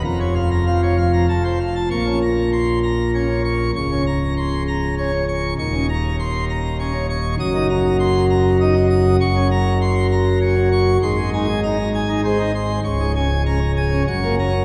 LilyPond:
<<
  \new Staff \with { instrumentName = "Pipe organ" } { \time 3/4 \key bes \minor \tempo 4 = 99 << { bes''16 des''16 f''16 bes''16 f''16 des''16 f''16 bes''16 a''16 c''16 f''16 a''16 | des'''8 bes''8 c'''8 bes''8 des''8 des'''8 | des'''8 bes''8 c'''8 bes''8 des''8 des'''8 | des'''8 bes''8 c'''8 bes''8 des''8 des'''8 |
ees'''8 bes''8 c'''8 bes''8 ees''8 ees'''8 | \key ges \lydian des'''8 bes''8 c'''8 bes''8 des''8 des'''8 | c'''8 aes''8 bes''8 aes''8 c''8 c'''8 | des'''8 aes''8 bes''8 aes''8 des'''8 bes''8 | } \\ { f,4 f8 r8 f,4 | bes,16 des'16 r4. des'16 r8. | des,16 des'16 r4. des'16 r8. | ees,16 des'16 r4. des'16 r8. |
ges,16 ees'16 r4. ees'16 r8. | ges,16 des'16 r4. des'16 r8. | aes,16 aes16 ees'16 r16 ees'16 r8 ees'16 aes16 ees'16 r8 | des,16 aes16 des'16 r16 des'16 r8 des'16 ges,16 bes16 des'16 r16 | } >> }
  \new Staff \with { instrumentName = "Pipe organ" } { \clef bass \time 3/4 \key bes \minor f,,2 f,,4 | bes,,2. | des,,2. | ees,,2. |
ges,,2. | \key ges \lydian ges,,2. | aes,,2. | des,,2 ges,,4 | }
>>